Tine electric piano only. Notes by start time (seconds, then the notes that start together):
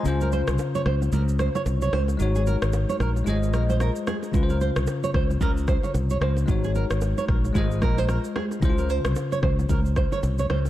Already playing: G#5
0.03 C#3 C#4 F4
0.08 C5
2.17 G#3 D#4 F#4
2.22 C#5
3.24 G#3 F4 C5
3.29 D#5
4.32 C#3 C#4 F4
4.37 B4
4.43 C5
6.20 C#3 C#4 F4 C5
6.46 G#3 D#4 F#4
6.51 C#5
7.53 G#3 F4 C5
7.58 D#5
8.60 C#3 C#4 E4
8.65 C5
8.70 F4